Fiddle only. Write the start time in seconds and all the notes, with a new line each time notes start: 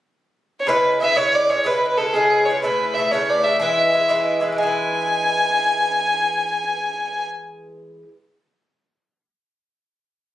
0.60 C#5
0.67 B4
1.01 E5
1.17 C#5
1.35 D5
1.50 C#5
1.67 B4
1.76 B4
1.88 B4
1.98 A4
2.13 G#4
2.45 C#5
2.62 B4
2.94 E5
3.11 C#5
3.30 D5
3.44 E5
3.61 E5
4.57 G#5